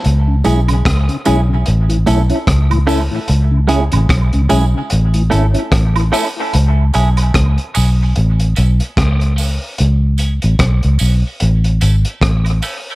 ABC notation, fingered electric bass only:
X:1
M:4/4
L:1/16
Q:"Swing 16ths" 1/4=74
K:C#m
V:1 name="Fingered electric bass" clef=bass
C,,2 B,,,2 C,, z B,,,2 A,,,2 B,,, z C,,3 z | C,,3 A,,, B,,, C,, B,,, z A,,,2 G,,, z A,,,2 z2 | C,,2 B,,,2 C,, z B,,,2 A,,,2 B,,, z C,,3 z | C,,3 A,,, B,,, C,, B,,, z A,,,2 G,,, z A,,,2 z2 |]